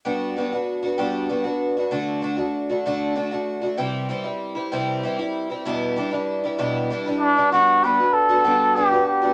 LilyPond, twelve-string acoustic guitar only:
\new Staff \with { instrumentName = "Twelve-string acoustic guitar" } { \time 6/8 \key g \major \tempo 4. = 64 <g b d' fis'>8 <g b d' fis'>16 <b d' fis'>8 <b d' fis'>16 <g b d' fis'>8 <g b d' fis'>16 <b d' fis'>8 <b d' fis'>16 | <d a d' fis'>8 <d a d' fis'>16 <a d' fis'>8 <a d' fis'>16 <d a d' fis'>8 <d a d' fis'>16 <a d' fis'>8 <a d' fis'>16 | <c e g c' e'>8 <e g c' e'>16 <g c' e'>8 <g c' e'>16 <c e g c' e'>8 <e g c' e'>16 <g c' e'>8 <g c' e'>16 | <e, b, e g d' e'>8 <e g d' e'>16 <e g d' e'>8 <e g d' e'>16 <e, b, e g d' e'>8 <e g d' e'>16 <e g d' e'>8 <e g d' e'>16 |
<g b d' fis'>8 <g b d' fis'>16 <b d' fis'>8 <b d' fis'>16 <g b d' fis'>8 <g b d' fis'>16 <b d' fis'>8 <b d' fis'>16 | }